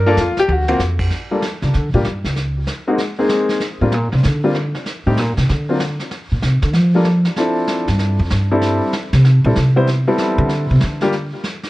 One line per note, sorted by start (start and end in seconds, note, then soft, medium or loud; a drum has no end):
0.00 0.16 G2 loud
0.06 0.17 A#3 medium
0.06 0.17 D4 medium
0.06 0.17 F4 medium
0.06 0.17 A4 medium
0.17 0.36 F2 loud
0.17 0.38 F4 medium
0.17 snare medium
0.17 hi-hat pedal medium
0.37 0.50 G4 loud
0.37 muted upright bass stroke soft
0.37 snare medium
0.48 0.79 D2 loud
0.48 0.67 F#4 medium
0.48 high tom medium
0.68 0.79 A#3 medium
0.68 0.79 C4 medium
0.68 0.79 F4 medium
0.68 0.79 F#4 medium
0.68 high tom medium
0.79 1.10 F2 medium
0.79 snare medium
0.79 hi-hat pedal medium
0.99 kick medium
0.99 crash loud
1.10 brush sweep soft
1.10 snare soft
1.31 1.42 G3 medium
1.31 1.42 A#3 medium
1.31 1.42 D4 medium
1.31 1.42 F4 soft
1.31 1.42 A4 medium
1.42 snare medium
1.62 1.74 C#3 medium
1.62 snare soft
1.74 1.93 D3 medium
1.74 brush sweep soft
1.74 snare soft
1.94 2.05 A#2 medium
1.94 2.04 G3 medium
1.94 2.04 A#3 medium
1.94 2.04 D4 medium
1.94 2.05 F4 medium
1.94 2.05 G4 medium
2.05 2.24 G2 medium
2.05 snare medium
2.24 2.64 C#2 medium
2.24 snare soft
2.36 brush sweep soft
2.36 snare soft
2.67 snare medium
2.88 2.98 G#3 medium
2.88 2.98 A#3 medium
2.88 2.98 C4 medium
2.88 2.98 D#4 medium
2.88 2.98 F#4 medium
2.98 brush sweep medium
2.98 snare medium
3.19 3.59 G#3 medium
3.19 3.59 A#3 medium
3.19 3.59 C4 medium
3.19 3.59 D#4 medium
3.19 3.59 G#4 medium
3.29 snare medium
3.49 snare soft
3.60 brush sweep medium
3.60 snare soft
3.81 3.94 A2 medium
3.81 3.92 G3 medium
3.81 3.92 A#3 medium
3.81 3.92 C4 soft
3.81 3.92 D4 medium
3.81 3.92 F4 medium
3.92 4.12 A#2 medium
3.92 snare medium
4.12 4.24 C3 medium
4.12 snare soft
4.23 4.72 D3 loud
4.23 brush sweep soft
4.23 snare soft
4.44 4.54 G3 medium
4.44 4.54 A#3 medium
4.44 4.54 C4 medium
4.44 4.54 D4 medium
4.44 4.54 F4 medium
4.55 snare medium
4.75 snare soft
4.86 brush sweep medium
4.86 snare soft
5.07 5.19 A2 medium
5.07 5.17 G3 medium
5.07 5.17 A3 medium
5.07 5.17 C4 medium
5.07 5.17 D#4 medium
5.07 5.17 G4 medium
5.17 5.37 A#2 medium
5.17 snare medium
5.37 5.49 C3 medium
5.37 snare soft
5.49 5.97 D3 loud
5.49 brush sweep soft
5.49 snare medium
5.69 5.79 F#3 medium
5.69 5.79 A#3 soft
5.69 5.79 C4 medium
5.69 5.80 D4 medium
5.69 5.79 F4 medium
5.80 snare medium
5.99 snare soft
6.11 brush sweep soft
6.11 snare soft
6.32 6.42 A#2 medium
6.42 6.62 C3 medium
6.42 snare medium
6.62 6.75 D3 loud
6.62 snare soft
6.73 7.26 F3 medium
6.73 brush sweep medium
6.73 snare medium
6.95 7.05 G3 medium
6.95 7.05 A#3 medium
6.95 7.05 D4 medium
6.95 7.05 F4 medium
6.95 7.05 A4 medium
7.05 snare medium
7.25 snare medium
7.36 7.84 F3 medium
7.36 7.84 C4 medium
7.36 7.84 D4 medium
7.36 7.84 E4 medium
7.36 7.84 A4 medium
7.36 brush sweep soft
7.36 snare soft
7.68 snare medium
7.88 8.17 G2 medium
7.88 snare soft
7.99 brush sweep medium
7.99 snare medium
8.19 8.30 F2 medium
8.30 8.79 G2 medium
8.30 snare medium
8.51 8.92 G3 medium
8.51 8.92 C4 medium
8.51 8.92 D4 medium
8.51 8.91 E4 medium
8.51 8.91 A4 medium
8.61 brush sweep soft
8.61 snare soft
8.93 snare medium
9.13 9.42 C3 loud
9.13 snare soft
9.24 brush sweep medium
9.24 snare medium
9.44 9.56 A#2 loud
9.44 9.55 G3 medium
9.44 9.55 C4 medium
9.44 9.55 D4 medium
9.44 9.55 E4 medium
9.44 9.56 A4 medium
9.55 10.04 C3 medium
9.55 snare medium
9.76 9.86 G3 medium
9.76 9.86 B3 medium
9.76 9.86 C4 medium
9.76 9.87 E4 medium
9.76 9.87 C5 medium
9.87 brush sweep soft
9.87 snare soft
10.07 10.48 G3 medium
10.07 10.48 B3 medium
10.07 10.48 C4 medium
10.07 10.48 E4 medium
10.07 10.48 A4 medium
10.18 snare medium
10.38 10.67 D3 loud
10.49 brush sweep medium
10.49 snare soft
10.71 10.81 C3 loud
10.80 11.30 D3 medium
10.80 snare medium
11.00 11.12 G3 medium
11.00 11.12 A#3 medium
11.00 11.12 D4 medium
11.00 11.12 F4 medium
11.00 11.12 G4 medium
11.00 snare soft
11.12 brush sweep soft
11.12 snare soft
11.44 snare medium
11.63 snare soft